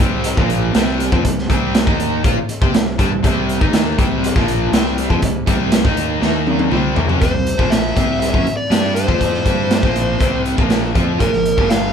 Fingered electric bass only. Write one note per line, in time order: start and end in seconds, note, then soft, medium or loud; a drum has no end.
0.00 0.35 C2 medium
0.37 0.72 A#1 medium
0.75 1.10 C2 medium
1.13 1.24 F2 medium
1.25 1.48 C2 medium
1.50 1.85 C2 medium
1.87 2.22 D#2 medium
2.24 2.36 A#2 medium
2.37 muted fingered electric bass stroke soft
2.62 2.73 C3 medium
2.74 2.97 C2 medium
2.99 3.11 G2 loud
3.12 3.23 C2 medium
3.24 3.59 C2 medium
3.61 3.96 D#2 medium
3.98 4.33 C2 medium
4.36 4.70 A#1 medium
4.72 5.07 C2 medium
5.10 5.22 F2 medium
5.23 5.46 C2 medium
5.48 5.82 C2 loud
5.85 6.20 D#2 medium
6.22 6.69 D#2 medium
6.72 6.95 C2 loud
6.97 7.09 D#2 loud
7.10 7.21 F#2 medium
7.22 7.33 C2 medium
7.34 7.57 C2 medium
7.59 7.94 A#1 medium
7.97 8.31 C2 medium
8.34 8.45 F#2 medium
8.45 muted fingered electric bass stroke soft
8.70 9.05 G2 medium
9.09 9.43 F2 medium
9.46 9.81 G2 medium
9.83 10.18 A#1 medium
10.20 10.55 C2 medium
10.58 10.93 A#1 medium
10.95 11.19 F2 medium
11.20 11.32 A#1 medium
11.33 11.56 A#1 medium
11.57 11.92 G1 medium